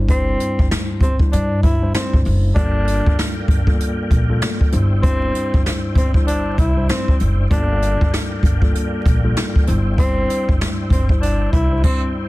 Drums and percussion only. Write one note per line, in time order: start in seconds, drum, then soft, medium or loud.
0.09 kick loud
0.09 closed hi-hat loud
0.40 closed hi-hat medium
0.59 kick medium
0.71 snare loud
0.71 closed hi-hat medium
1.01 kick loud
1.01 closed hi-hat medium
1.19 kick loud
1.33 closed hi-hat medium
1.63 kick loud
1.63 closed hi-hat medium
1.94 snare loud
1.94 closed hi-hat medium
2.13 kick medium
2.25 open hi-hat medium
2.56 kick loud
2.56 closed hi-hat medium
2.87 closed hi-hat medium
3.06 kick medium
3.19 snare loud
3.19 closed hi-hat medium
3.48 kick loud
3.48 closed hi-hat medium
3.67 kick loud
3.80 closed hi-hat medium
4.11 kick loud
4.11 closed hi-hat medium
4.42 snare loud
4.42 closed hi-hat medium
4.61 kick medium
4.72 closed hi-hat medium
5.03 kick loud
5.03 closed hi-hat loud
5.35 closed hi-hat medium
5.54 kick medium
5.66 snare loud
5.66 closed hi-hat medium
5.95 kick loud
5.95 closed hi-hat medium
6.14 kick loud
6.28 closed hi-hat medium
6.58 kick loud
6.58 closed hi-hat medium
6.89 snare loud
6.89 closed hi-hat medium
7.08 kick medium
7.20 closed hi-hat medium
7.51 kick loud
7.51 closed hi-hat loud
7.82 closed hi-hat medium
8.01 kick medium
8.14 snare loud
8.14 closed hi-hat loud
8.43 kick loud
8.43 closed hi-hat medium
8.62 kick loud
8.75 closed hi-hat medium
9.06 kick medium
9.06 closed hi-hat medium
9.36 snare loud
9.36 closed hi-hat medium
9.56 kick medium
9.67 closed hi-hat medium
9.98 kick loud
9.98 closed hi-hat loud
10.30 closed hi-hat medium
10.49 kick medium
10.61 snare loud
10.61 closed hi-hat medium
10.90 kick loud
10.90 closed hi-hat medium
11.09 kick loud
11.23 closed hi-hat medium
11.53 kick loud
11.53 closed hi-hat medium
11.84 kick loud
11.84 crash medium